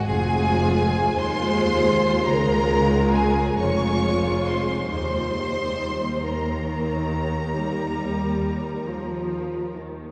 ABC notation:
X:1
M:12/8
L:1/16
Q:3/8=46
K:Ebmix
V:1 name="Violin section"
a6 c'6 b4 a2 d'4 c'2 | c'6 b16 z2 |]
V:2 name="Violin section"
A6 c6 B4 A2 d4 c2 | c6 B16 z2 |]
V:3 name="Viola section" clef=bass
[A,F]6 [A,F]6 [A,F]6 [A,F]6 | [G,E]6 E,6 G,6 F,4 E,2 |]
V:4 name="Cello section" clef=bass
F,,6 E,,6 D,,6 F,,6 | E,,16- E,,6- E,, z |]
V:5 name="Double bass section" clef=bass
F,,,6 E,,6 D,,6 F,,,6 | E,,16- E,,6- E,, z |]